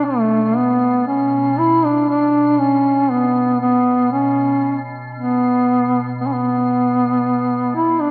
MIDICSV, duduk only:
0, 0, Header, 1, 2, 480
1, 0, Start_track
1, 0, Key_signature, 2, "minor"
1, 0, Tempo, 1020408
1, 22, Time_signature, 3, 2, 24, 8
1, 2422, Tempo, 1041667
1, 3786, End_track
2, 0, Start_track
2, 0, Title_t, "Duduk"
2, 0, Program_c, 0, 69
2, 21, Note_on_c, 0, 57, 74
2, 268, Note_on_c, 0, 59, 67
2, 275, Note_off_c, 0, 57, 0
2, 501, Note_off_c, 0, 59, 0
2, 503, Note_on_c, 0, 61, 72
2, 747, Note_on_c, 0, 64, 88
2, 754, Note_off_c, 0, 61, 0
2, 872, Note_on_c, 0, 62, 75
2, 879, Note_off_c, 0, 64, 0
2, 983, Note_off_c, 0, 62, 0
2, 986, Note_on_c, 0, 62, 82
2, 1221, Note_on_c, 0, 61, 80
2, 1228, Note_off_c, 0, 62, 0
2, 1463, Note_on_c, 0, 59, 73
2, 1470, Note_off_c, 0, 61, 0
2, 1695, Note_off_c, 0, 59, 0
2, 1698, Note_on_c, 0, 59, 79
2, 1922, Note_off_c, 0, 59, 0
2, 1937, Note_on_c, 0, 61, 65
2, 2277, Note_off_c, 0, 61, 0
2, 2422, Note_on_c, 0, 59, 83
2, 2881, Note_off_c, 0, 59, 0
2, 2909, Note_on_c, 0, 59, 59
2, 2935, Note_on_c, 0, 61, 50
2, 2942, Note_off_c, 0, 59, 0
2, 2967, Note_on_c, 0, 59, 75
2, 2974, Note_off_c, 0, 61, 0
2, 3618, Note_off_c, 0, 59, 0
2, 3622, Note_on_c, 0, 64, 77
2, 3737, Note_on_c, 0, 62, 70
2, 3743, Note_off_c, 0, 64, 0
2, 3786, Note_off_c, 0, 62, 0
2, 3786, End_track
0, 0, End_of_file